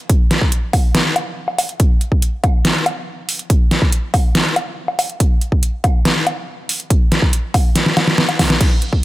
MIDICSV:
0, 0, Header, 1, 2, 480
1, 0, Start_track
1, 0, Tempo, 425532
1, 107, Time_signature, 4, 2, 24, 8
1, 10201, End_track
2, 0, Start_track
2, 0, Title_t, "Drums"
2, 107, Note_on_c, 9, 36, 127
2, 107, Note_on_c, 9, 42, 80
2, 220, Note_off_c, 9, 36, 0
2, 220, Note_off_c, 9, 42, 0
2, 347, Note_on_c, 9, 38, 66
2, 347, Note_on_c, 9, 42, 53
2, 460, Note_off_c, 9, 38, 0
2, 460, Note_off_c, 9, 42, 0
2, 468, Note_on_c, 9, 36, 68
2, 581, Note_off_c, 9, 36, 0
2, 587, Note_on_c, 9, 42, 81
2, 700, Note_off_c, 9, 42, 0
2, 827, Note_on_c, 9, 46, 58
2, 827, Note_on_c, 9, 77, 80
2, 828, Note_on_c, 9, 36, 110
2, 940, Note_off_c, 9, 36, 0
2, 940, Note_off_c, 9, 46, 0
2, 940, Note_off_c, 9, 77, 0
2, 1068, Note_on_c, 9, 38, 127
2, 1068, Note_on_c, 9, 42, 83
2, 1180, Note_off_c, 9, 38, 0
2, 1180, Note_off_c, 9, 42, 0
2, 1308, Note_on_c, 9, 42, 53
2, 1308, Note_on_c, 9, 77, 82
2, 1421, Note_off_c, 9, 42, 0
2, 1421, Note_off_c, 9, 77, 0
2, 1668, Note_on_c, 9, 77, 52
2, 1781, Note_off_c, 9, 77, 0
2, 1788, Note_on_c, 9, 46, 89
2, 1788, Note_on_c, 9, 77, 82
2, 1901, Note_off_c, 9, 46, 0
2, 1901, Note_off_c, 9, 77, 0
2, 1908, Note_on_c, 9, 42, 36
2, 2021, Note_off_c, 9, 42, 0
2, 2027, Note_on_c, 9, 42, 76
2, 2028, Note_on_c, 9, 36, 122
2, 2140, Note_off_c, 9, 42, 0
2, 2141, Note_off_c, 9, 36, 0
2, 2268, Note_on_c, 9, 42, 51
2, 2381, Note_off_c, 9, 42, 0
2, 2388, Note_on_c, 9, 36, 63
2, 2501, Note_off_c, 9, 36, 0
2, 2508, Note_on_c, 9, 42, 76
2, 2621, Note_off_c, 9, 42, 0
2, 2748, Note_on_c, 9, 36, 109
2, 2748, Note_on_c, 9, 42, 52
2, 2748, Note_on_c, 9, 77, 80
2, 2861, Note_off_c, 9, 36, 0
2, 2861, Note_off_c, 9, 42, 0
2, 2861, Note_off_c, 9, 77, 0
2, 2988, Note_on_c, 9, 38, 119
2, 2988, Note_on_c, 9, 42, 79
2, 3100, Note_off_c, 9, 38, 0
2, 3100, Note_off_c, 9, 42, 0
2, 3228, Note_on_c, 9, 42, 52
2, 3228, Note_on_c, 9, 77, 86
2, 3341, Note_off_c, 9, 42, 0
2, 3341, Note_off_c, 9, 77, 0
2, 3708, Note_on_c, 9, 46, 89
2, 3820, Note_off_c, 9, 46, 0
2, 3828, Note_on_c, 9, 42, 36
2, 3941, Note_off_c, 9, 42, 0
2, 3947, Note_on_c, 9, 36, 117
2, 3948, Note_on_c, 9, 42, 76
2, 4060, Note_off_c, 9, 36, 0
2, 4061, Note_off_c, 9, 42, 0
2, 4188, Note_on_c, 9, 38, 59
2, 4188, Note_on_c, 9, 42, 51
2, 4301, Note_off_c, 9, 38, 0
2, 4301, Note_off_c, 9, 42, 0
2, 4307, Note_on_c, 9, 36, 61
2, 4420, Note_off_c, 9, 36, 0
2, 4427, Note_on_c, 9, 42, 78
2, 4540, Note_off_c, 9, 42, 0
2, 4667, Note_on_c, 9, 36, 104
2, 4667, Note_on_c, 9, 46, 59
2, 4667, Note_on_c, 9, 77, 82
2, 4780, Note_off_c, 9, 36, 0
2, 4780, Note_off_c, 9, 46, 0
2, 4780, Note_off_c, 9, 77, 0
2, 4907, Note_on_c, 9, 38, 118
2, 4907, Note_on_c, 9, 42, 77
2, 5020, Note_off_c, 9, 38, 0
2, 5020, Note_off_c, 9, 42, 0
2, 5147, Note_on_c, 9, 42, 52
2, 5147, Note_on_c, 9, 77, 84
2, 5260, Note_off_c, 9, 42, 0
2, 5260, Note_off_c, 9, 77, 0
2, 5507, Note_on_c, 9, 77, 56
2, 5620, Note_off_c, 9, 77, 0
2, 5627, Note_on_c, 9, 46, 95
2, 5627, Note_on_c, 9, 77, 86
2, 5740, Note_off_c, 9, 46, 0
2, 5740, Note_off_c, 9, 77, 0
2, 5747, Note_on_c, 9, 42, 36
2, 5860, Note_off_c, 9, 42, 0
2, 5867, Note_on_c, 9, 36, 114
2, 5868, Note_on_c, 9, 42, 78
2, 5980, Note_off_c, 9, 36, 0
2, 5980, Note_off_c, 9, 42, 0
2, 6108, Note_on_c, 9, 42, 52
2, 6220, Note_off_c, 9, 42, 0
2, 6227, Note_on_c, 9, 36, 61
2, 6340, Note_off_c, 9, 36, 0
2, 6348, Note_on_c, 9, 42, 79
2, 6461, Note_off_c, 9, 42, 0
2, 6587, Note_on_c, 9, 36, 104
2, 6589, Note_on_c, 9, 42, 51
2, 6589, Note_on_c, 9, 77, 80
2, 6700, Note_off_c, 9, 36, 0
2, 6702, Note_off_c, 9, 42, 0
2, 6702, Note_off_c, 9, 77, 0
2, 6828, Note_on_c, 9, 38, 115
2, 6828, Note_on_c, 9, 42, 77
2, 6941, Note_off_c, 9, 38, 0
2, 6941, Note_off_c, 9, 42, 0
2, 7069, Note_on_c, 9, 42, 53
2, 7069, Note_on_c, 9, 77, 84
2, 7182, Note_off_c, 9, 42, 0
2, 7182, Note_off_c, 9, 77, 0
2, 7548, Note_on_c, 9, 46, 98
2, 7661, Note_off_c, 9, 46, 0
2, 7669, Note_on_c, 9, 42, 36
2, 7782, Note_off_c, 9, 42, 0
2, 7788, Note_on_c, 9, 36, 118
2, 7789, Note_on_c, 9, 42, 80
2, 7901, Note_off_c, 9, 36, 0
2, 7902, Note_off_c, 9, 42, 0
2, 8029, Note_on_c, 9, 38, 61
2, 8029, Note_on_c, 9, 42, 54
2, 8141, Note_off_c, 9, 38, 0
2, 8141, Note_off_c, 9, 42, 0
2, 8148, Note_on_c, 9, 36, 63
2, 8261, Note_off_c, 9, 36, 0
2, 8269, Note_on_c, 9, 42, 85
2, 8381, Note_off_c, 9, 42, 0
2, 8508, Note_on_c, 9, 36, 107
2, 8509, Note_on_c, 9, 46, 64
2, 8509, Note_on_c, 9, 77, 76
2, 8621, Note_off_c, 9, 36, 0
2, 8622, Note_off_c, 9, 46, 0
2, 8622, Note_off_c, 9, 77, 0
2, 8748, Note_on_c, 9, 38, 63
2, 8748, Note_on_c, 9, 42, 83
2, 8861, Note_off_c, 9, 38, 0
2, 8861, Note_off_c, 9, 42, 0
2, 8869, Note_on_c, 9, 38, 56
2, 8981, Note_off_c, 9, 38, 0
2, 8988, Note_on_c, 9, 38, 76
2, 8988, Note_on_c, 9, 42, 56
2, 8988, Note_on_c, 9, 77, 81
2, 9101, Note_off_c, 9, 38, 0
2, 9101, Note_off_c, 9, 42, 0
2, 9101, Note_off_c, 9, 77, 0
2, 9108, Note_on_c, 9, 38, 68
2, 9221, Note_off_c, 9, 38, 0
2, 9228, Note_on_c, 9, 38, 86
2, 9341, Note_off_c, 9, 38, 0
2, 9348, Note_on_c, 9, 42, 38
2, 9348, Note_on_c, 9, 77, 52
2, 9461, Note_off_c, 9, 42, 0
2, 9461, Note_off_c, 9, 77, 0
2, 9468, Note_on_c, 9, 36, 60
2, 9468, Note_on_c, 9, 38, 101
2, 9468, Note_on_c, 9, 46, 101
2, 9468, Note_on_c, 9, 77, 78
2, 9581, Note_off_c, 9, 36, 0
2, 9581, Note_off_c, 9, 38, 0
2, 9581, Note_off_c, 9, 46, 0
2, 9581, Note_off_c, 9, 77, 0
2, 9589, Note_on_c, 9, 38, 89
2, 9702, Note_off_c, 9, 38, 0
2, 9708, Note_on_c, 9, 36, 123
2, 9708, Note_on_c, 9, 42, 82
2, 9708, Note_on_c, 9, 49, 78
2, 9708, Note_on_c, 9, 51, 65
2, 9821, Note_off_c, 9, 36, 0
2, 9821, Note_off_c, 9, 42, 0
2, 9821, Note_off_c, 9, 49, 0
2, 9821, Note_off_c, 9, 51, 0
2, 9948, Note_on_c, 9, 42, 57
2, 10061, Note_off_c, 9, 42, 0
2, 10068, Note_on_c, 9, 36, 64
2, 10181, Note_off_c, 9, 36, 0
2, 10201, End_track
0, 0, End_of_file